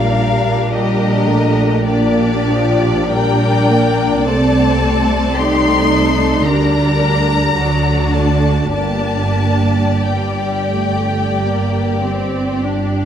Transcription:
Already playing: A#1 A#2 G3 D4 A#4 D5 F5
0.18 D4
0.72 G3 G4 A#4 D#5
1.29 A3
1.85 A#3 D4 G4 D5
2.48 F3
3.12 G3 D4 A#4 G5
3.72 A#3
4.25 C2 C3 A3 C4 A4 A5
4.82 A3
5.35 A3 D#4 G4 C6
5.92 A4
6.46 D2 D3 G3 D4 A#4 D5 A#5
7.57 D2 D3 F#3 D4 F#4 D5
8.13 A3 A5
8.73 A#3 D4 G4 D5 A5
8.77 G1 G2
10.04 G3 G5
10.71 A3
11.39 A#3
12.03 C4
12.64 D4

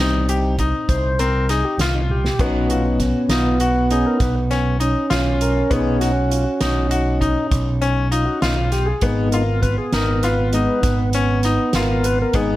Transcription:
Already playing: G3 C4
0.00 C2 D#4
0.29 G3 C4 D#4 G4, closed hi-hat
0.59 D#4, kick, closed hi-hat
0.89 C2 C5, kick, closed hi-hat
1.19 C4 A#4, closed hi-hat
1.49 D#4 G#4, snare, closed hi-hat
1.64 G4
1.78 C2 F4, snare, closed hi-hat
1.95 D#4
2.10 G4, high tom
2.25 snare
2.39 B1 B3 C#4 D#4 F#4, kick, closed hi-hat, splash
2.70 F4 F#4, closed hi-hat
2.85 D#4
3.00 C#4, kick, snare, closed hi-hat
3.29 B1 D#4 F4, snare, closed hi-hat
3.60 F#4, closed hi-hat
3.90 B3 C#4 D#4 G#4, closed hi-hat
4.06 A#4
4.20 B1 B4, kick, snare, closed hi-hat
4.51 C#4, snare, closed hi-hat
4.80 C#4 D#4, closed hi-hat
5.10 B1 F4, snare, closed hi-hat
5.41 A#4, closed hi-hat
5.71 B1 B3 C#4 D#4 G#4, kick, closed hi-hat
6.00 F#4, snare, closed hi-hat
6.30 F4, closed hi-hat
6.44 F#4
6.61 B1 D#4, snare, closed hi-hat
6.89 D#4 F#4, closed hi-hat
7.21 D#4, kick, closed hi-hat
7.51 B1, kick, closed hi-hat
7.82 C#4, closed hi-hat
8.11 D#4 F4, closed hi-hat
8.25 F#4
8.41 B1 D#4 F4, snare, closed hi-hat
8.56 F4
8.72 G4, snare, closed hi-hat
8.86 G#4
9.01 G#1 G#3 B3 D#4, kick, closed hi-hat
9.32 F4 A#4, closed hi-hat
9.62 B4, kick, closed hi-hat
9.78 G#4
9.93 G#1 D#4 A#4, snare, closed hi-hat
10.23 F4 B4, snare, closed hi-hat
10.53 G#3 B3 D#4, closed hi-hat
10.83 G#1, kick, snare, closed hi-hat
11.13 C#4, closed hi-hat
11.43 D#4, snare, closed hi-hat
11.73 G#1 F4 A#4, snare, closed hi-hat
12.04 B4, closed hi-hat
12.22 A#4
12.33 G#1 G#3 B3 D#4 G#4, kick, closed hi-hat

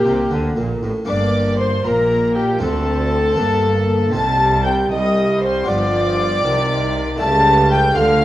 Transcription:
Already playing: A#3 D4 G4 G5
0.05 C2 C3
0.31 D2 D3
0.57 A#1 A#2
0.82 A1 A2
1.05 G2 A#3 D4 D5 D6
1.09 G1 D5
1.59 C5 C6
1.84 A#1 A#2 A#3 A#4 A#5
2.35 G4 G5
2.59 D2 C4 D4 A4 A5
3.36 G1 G2 A#3 D4
4.11 C2 C3 C4 D#4 A5 A6
4.16 C3 G3
4.65 G5 G6
4.91 C2 G3 D#5 D#6
5.42 C5 C6
5.64 G2 B3 F4 D6
5.68 G1 F3 D5
6.41 C3 C4 D#4
6.45 C2 C3 D#3
7.16 C#3 A3 E4
7.21 C#2 C#3 G3 A5 A6
7.71 G5 G6
7.94 D2 D3 A3 F4 F5 F6
7.98 A3

